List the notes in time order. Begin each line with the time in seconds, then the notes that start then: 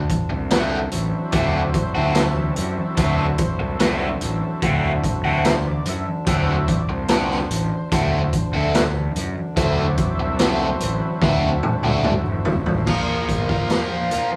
Already playing: D2 D3
0.10 kick, closed hi-hat, high conga
0.30 C2, muted overdriven electric guitar stroke
0.51 D3 A3 C4 F#4, snare, closed hi-hat
0.91 A1 F#3 C4 E4, closed hi-hat, low conga
1.31 D2 D3 A3 C4 F#4 D5, kick, closed hi-hat
1.72 C5, kick, closed hi-hat, high conga
1.94 D2 D3 A3 C4 F#4 B4
2.14 A4, snare, closed hi-hat
2.36 high conga
2.54 F#2 G4, closed hi-hat, low conga
2.77 A4, high conga
2.96 D2 D3 A3 C4 F#4 B4, kick, closed hi-hat
3.38 C5, kick, closed hi-hat, high conga
3.58 C2 A4, muted overdriven electric guitar stroke
3.80 D3 A3 C4 F#4, snare, closed hi-hat
4.20 A1 F#3 C4 E4, closed hi-hat, high conga, low conga
4.62 D2 D3 A3 C4 F#4, kick, closed hi-hat
5.04 kick, closed hi-hat, high conga
5.24 D2 D3 A3 C4 F#4
5.45 C5, snare, closed hi-hat
5.66 D5, high conga
5.86 F#2 E5, closed hi-hat, low conga
6.07 high conga
6.26 D2 D3 F#3 A3 C4 E4 F#4 E5, kick, closed hi-hat
6.68 D5, kick, closed hi-hat, high conga
6.89 C2 C5, muted overdriven electric guitar stroke
7.08 D3 A3 C4 F#4, snare, closed hi-hat
7.31 snare
7.50 A1, closed hi-hat, high conga, low conga
7.92 D2 D3 F#3 A3 C4 E4 F#4, kick, closed hi-hat
8.33 kick, closed hi-hat, high conga
8.53 D2 D3 A3 C4 F#4
8.75 snare, closed hi-hat
8.97 high conga
9.15 F#2, closed hi-hat, low conga
9.38 high conga
9.57 D2 D3 F#3 A3 C4 E4 F#4 C5, kick, closed hi-hat
9.76 D5
9.97 kick, closed hi-hat, high conga, low conga
10.15 C2 E5
10.20 muted overdriven electric guitar stroke
10.36 D3 A3 D5, snare, closed hi-hat
10.41 C4 F#4
10.58 C5
10.80 A1, closed hi-hat, high conga, low conga
10.98 B4
11.22 D2 D3 A3 C4 F#4, kick, snare
11.39 A4
11.63 high tom, high conga
11.81 D2 A3 C4 F#4 A4, high tom
11.85 D3
12.04 mid tom, low conga
12.24 E1, high conga
12.45 F#1, floor tom
12.66 A1, floor tom, high conga
12.85 A#1 A#2 F3 A#3 F4 C5 A#5 C6, kick, crash
12.89 A#4
13.08 high conga
13.29 G1, kick, closed hi-hat
13.49 A#3 F4 A#4, kick, high conga
13.70 A#2 F3 A#3 F4 A#4, snare, closed hi-hat, low conga
14.11 F3 A#3 F4 A#4, closed hi-hat, low conga
14.32 muted overdriven electric guitar stroke